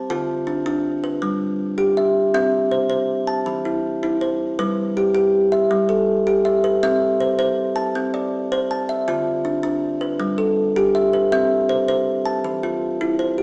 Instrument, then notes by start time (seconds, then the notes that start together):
kalimba
Already playing: A5
0.10 D3 F4
0.47 D4
0.66 D4
1.04 B4
1.22 G3
1.78 G4
1.97 E5
2.34 C4 E5
2.71 C5
2.90 C5
3.27 A5
3.46 E3
3.65 E4
4.03 E4
4.21 C5
4.59 G3 B4
4.97 G4
5.15 G4
5.52 E5
5.71 G3
5.89 A4
6.27 G4
6.45 E5
6.64 B4
6.83 C4 E5
7.20 C5
7.39 C5
7.76 A5
7.95 C4
8.14 D5
8.52 C5
8.71 A5
8.89 E5
9.08 D3 F4
9.45 D4
9.63 D4
10.01 B4
10.20 G3
10.38 A4
10.76 G4
10.95 E5
11.13 B4
11.32 C4 E5
11.69 C5
11.88 C5
12.26 A5
12.44 E3
12.63 F4
13.01 E4
13.19 C5
13.38 G4